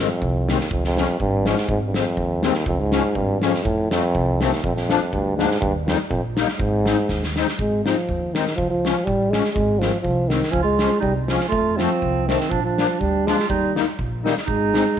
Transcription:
0.00 F2
0.22 C2, kick
0.48 D#2 D#3 G#3 C4, snare
0.60 snare
0.71 C#2 F2, kick
0.84 F2, snare
0.96 F3 G#3 C#4, snare
1.20 G#1 G2, kick
1.45 G#2 F3 G#3 C#4, snare
1.57 snare
1.69 G#1 G#2, kick
1.87 G2
1.93 F2 D#3 G#3 C4, snare
2.17 D#2, kick
2.42 D#2 D#3 G#3 C4, snare
2.54 snare
2.66 C#2 F2, kick
2.80 G#2
2.92 F3 G#3 C#4, snare
3.15 G#1 G2, kick
3.40 F2 F3 G#3 C#4, snare
3.54 snare
3.63 F2 A2, kick
3.90 F2 F3 A3 C4, snare
4.15 C2, kick
4.40 D#2 F3 A3 C4, snare
4.52 snare
4.63 A#1 F2, kick
4.75 F2, snare
4.88 F3 A#3 D4, snare
5.12 D2 G2, kick
5.37 G#2 F3 A#3 D4, snare
5.51 snare
5.60 D#2 G2, kick
5.86 F2 G3 A#3 D#4, snare
6.09 A#1 F2, kick
6.36 G3 A#3 D#4, snare
6.48 snare
6.57 G#1 G#2, kick
6.86 G#3 C4 D#4, snare
7.09 D#2, kick, snare
7.23 snare
7.36 G#3 C4 D#4, snare
7.48 snare
7.59 G#1 G#3, kick
7.85 F3 G#3 C4 D#4, snare
8.09 D#2, kick
8.34 D#3 G#3 C4 D#4, snare
8.47 snare
8.56 C#2 F3, kick
8.70 F3
8.85 F3 G#3 C#4, snare
9.05 A1 G3, kick
9.31 F3 G#3 C#4, snare
9.44 snare
9.53 G#1 G#3, kick
9.79 D#3 F3 G#3 C4, snare
10.01 C2 F3, kick
10.28 D#3 G#3 C4, snare
10.42 snare
10.50 C#2 F3 C#4, kick
10.62 G#3 F4
10.79 F3 G#3 C#4, snare
10.99 C2 G3 D#4, kick
11.26 F3 G#3 C#4, snare
11.30 C#4
11.40 snare
11.48 A3 F4
11.52 F2, kick
11.76 F3 A3 C4, snare
11.81 C4
12.02 C2, kick
12.27 D#3 F3 A3 C4, snare
12.40 snare
12.50 A#1 F3 D4, kick
12.63 F3 D4
12.77 F3 A#3 D4, snare
13.00 D2 G3 D4, kick
13.26 F3 G#3 A#3 D4 F4, snare
13.39 snare
13.48 D#2 G3 D#4, kick
13.75 G3 A#3 D#4, snare
13.99 A#1, kick
14.24 D#3 G3 A#3 C4 D#4, snare
14.37 snare
14.46 G#1 G#3 D#4, kick
14.73 G#3 C4 D#4, snare

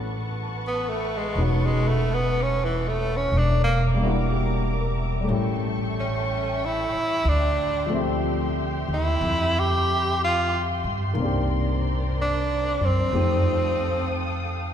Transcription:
Already playing: A1 A3 B3 C#4 E4 F#4 B4 F#5 A5 C#6
0.67 B3
0.89 A3
1.18 G#3
1.35 E1 C#4 D#4 F#4
1.43 F#3
1.65 G#3
1.88 A3
2.14 B3
2.42 C#4
2.64 E3
2.88 A3
3.17 C#4
3.32 E1 A#4 E5 A#5 D6
3.38 D4
3.64 A#3
3.94 G3 A#3
4.00 D4 E4
4.05 F#4
4.32 G4
4.80 A#4
5.21 G3 A3
5.26 A1 C#4 E4 A4 G5 C#6
5.32 G4
6.00 C#4
6.65 E4
6.94 muted upright bass stroke
7.25 D2 D4
7.29 G4 G5 C6
7.86 F3 A3
7.91 C4 E5
7.97 G4
8.89 D#2
8.94 E4
9.21 F2
9.59 G4
10.24 F4
10.84 G2
11.13 C2 D#3 A#3
11.19 C4 D4 A#4 C5 D5
11.24 G4
12.22 D4
12.81 F#2
12.85 C4
13.10 F2 F3 A3 A4 F5 G5 D#6
13.15 C4 D#4 G4

